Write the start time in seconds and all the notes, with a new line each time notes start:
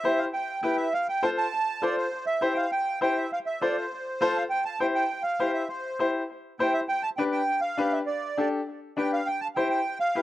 Already playing: E5
0.04 E4 G4 C5
0.18 F5
0.33 G5
0.62 E4 G4 B4 G5
0.77 E5
0.93 F5
1.09 G5
1.22 F4 A4 C5 A5
1.38 A5
1.82 F4 A4 C5 D5
1.97 C5
2.26 E5
2.41 E4 G4 C5
2.54 F5 G5
2.72 G5
3.01 E4 G4 C5 G5
3.17 E5
3.33 F5
3.46 E5
3.61 F4 A4 C5 D5
3.77 C5
4.21 F4 A4 C5 A5
4.37 F5
4.50 G5
4.65 A5
4.80 E4 G4 C5 G5
4.95 G5
5.23 F5
5.39 E4 G4 C5
5.53 E5
5.69 C5
5.99 E4 G4 C5
6.59 E4 G4 C5 G5
6.73 E5
6.88 G5
7.03 A5
7.17 D4 G4 B4 G5
7.32 G5
7.61 F5
7.77 D4 G4 B4
7.92 E5
8.06 D5
8.37 D4 G4 A4
8.97 D4 G4 B4 G5
9.13 F5
9.26 G5
9.40 A5
9.55 E4 G4 C5 G5
9.70 G5
10.00 F5
10.15 E4 G4 B4